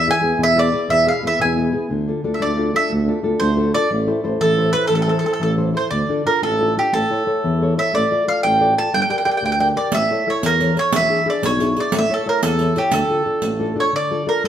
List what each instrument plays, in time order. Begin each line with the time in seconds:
Already playing: tuba E2, nylon-string guitar E3
0.07 nylon-string guitar B3 E4 G#4, mandolin G#5
0.21 tuba E2, nylon-string guitar B3 E4 G#4
0.38 tuba E2, nylon-string guitar B2
0.43 mandolin E5
0.55 nylon-string guitar B3 E4 G#4, mandolin D5
0.72 nylon-string guitar B3 E4 G#4
0.88 tuba E2, nylon-string guitar B2, mandolin E5
1.06 nylon-string guitar B3 E4 G#4, mandolin F5
1.22 tuba E2, nylon-string guitar B3 E4 G#4
1.27 mandolin E5
1.39 tuba E2, nylon-string guitar B2, mandolin G#5
1.57 nylon-string guitar B3 E4 G#4
1.73 nylon-string guitar B3 E4 G#4
1.89 tuba D2, nylon-string guitar D3
2.07 nylon-string guitar D4 F4 A4
2.24 tuba D2, nylon-string guitar D4 F4 A4
2.34 mandolin E5
2.40 tuba D2, nylon-string guitar A3, mandolin D5
2.58 nylon-string guitar D4 F4 A4
2.74 nylon-string guitar D4 F4 A4, mandolin E5
2.90 tuba D2, nylon-string guitar A3
3.08 nylon-string guitar D4 F4 A4
3.23 tuba D2, nylon-string guitar D4 F4 A4
3.40 tuba D2, nylon-string guitar A3, mandolin C5
3.56 nylon-string guitar D4 F4 A4
3.74 nylon-string guitar D4 F4 A4, mandolin D5
3.91 tuba A1, nylon-string guitar A3
4.07 nylon-string guitar E4 A4 C5
4.24 tuba A1, nylon-string guitar E4 A4 C5
4.41 tuba A1, nylon-string guitar E3, mandolin A4
4.57 nylon-string guitar E4 A4 C5
4.73 nylon-string guitar E4 A4 C5, mandolin B4
4.87 tuba A1, nylon-string guitar E3, mandolin A4
4.95 mandolin A4
5.02 mandolin A4
5.07 nylon-string guitar E4 A4 C5, mandolin A4
5.19 mandolin A4
5.24 nylon-string guitar E4 A4 C5, mandolin A4
5.33 mandolin A4
5.40 tuba A1, nylon-string guitar E3, mandolin A4
5.57 nylon-string guitar E4 A4 C5
5.73 nylon-string guitar E4 A4 C5, mandolin C5
5.91 tuba D2, nylon-string guitar D3, mandolin D5
6.09 nylon-string guitar D4 F4 A4
6.26 nylon-string guitar D4 F4 A4, mandolin A#4
6.42 tuba A1, nylon-string guitar A3, mandolin A4
6.59 nylon-string guitar D4 F4 A4
6.77 nylon-string guitar D4 F4 A4, mandolin G4
6.93 tuba A1, nylon-string guitar A3, mandolin A4
7.10 nylon-string guitar E4 A4 C#5
7.26 nylon-string guitar E4 A4 C#5
7.44 tuba E2, nylon-string guitar E3
7.62 nylon-string guitar E4 A4 C#5
7.77 nylon-string guitar E4 A4 C#5, mandolin E5
7.93 tuba A1, nylon-string guitar A3, mandolin D5
8.11 nylon-string guitar F4 A4 D5
8.27 nylon-string guitar F4 A4 D5, mandolin F5
8.43 tuba A1, nylon-string guitar A3, mandolin G5
8.60 nylon-string guitar F4 A4 D5
8.77 nylon-string guitar F4 A4 D5, mandolin A5
8.92 tuba G1, nylon-string guitar G3, mandolin G5
9.02 mandolin G5
9.10 nylon-string guitar G4 A#4 D5, mandolin G5
9.18 mandolin G5
9.25 nylon-string guitar G4 A#4 D5, mandolin G5
9.31 mandolin G5
9.37 mandolin G5
9.42 tuba D2, nylon-string guitar D3, mandolin G5
9.52 mandolin G5
9.59 nylon-string guitar G4 A#4 D5, mandolin G5
9.76 nylon-string guitar G4 A#4 D5, mandolin D5
9.92 tuba A1, nylon-string guitar A3, mandolin E5, riq
10.11 nylon-string guitar E4 A4 C#5
10.27 nylon-string guitar E4 A4 C#5, mandolin C#5
10.43 tuba E2, nylon-string guitar E3, mandolin A#4, riq
10.60 nylon-string guitar E4 A4 C#5, riq
10.76 nylon-string guitar E4 A4 C#5, mandolin C#5, riq
10.92 tuba E1, nylon-string guitar E3, mandolin E5, riq
11.09 nylon-string guitar D4 E4 G#4
11.25 nylon-string guitar D4 E4 G#4
11.30 mandolin D5
11.42 tuba B1, nylon-string guitar B2, mandolin C#5, riq
11.59 nylon-string guitar D4 E4 G#4, riq
11.76 nylon-string guitar D4 E4 G#4, riq
11.80 mandolin D5
11.92 tuba A1, nylon-string guitar A3, riq
11.98 mandolin E5
12.09 nylon-string guitar E4 A4 C#5
12.14 mandolin A4
12.26 nylon-string guitar E4 A4 C#5, mandolin A#4
12.42 tuba E2, nylon-string guitar E3, mandolin A4, riq
12.59 nylon-string guitar E4 A4 C#5, riq
12.76 nylon-string guitar E4 A4 C#5, mandolin G4, riq
12.91 tuba D2, nylon-string guitar D3, mandolin A4, riq
13.09 nylon-string guitar D4 F4 A4
13.25 nylon-string guitar D4 F4 A4
13.42 tuba A1, nylon-string guitar A3, riq
13.59 nylon-string guitar D4 F4 A4
13.76 nylon-string guitar D4 F4 A4
13.80 mandolin C#5
13.93 nylon-string guitar D3, mandolin D5
14.11 nylon-string guitar D4 F4 A4
14.26 nylon-string guitar D4 F4 A4, mandolin A#4
14.44 nylon-string guitar A3